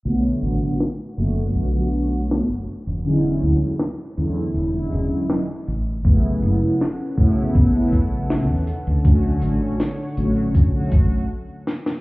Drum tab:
HH |x-x-x-x-x-x-x-x-|x-x-x-x-x-x-x-x-|x-x-x-x-x-x-x-x-|x-x-x-x-x-x-----|
SD |----o-------o---|----o-------o---|----o-------o---|----o---------oo|
BD |----------------|----------------|o-----o-o-o-----|o-------o-o-----|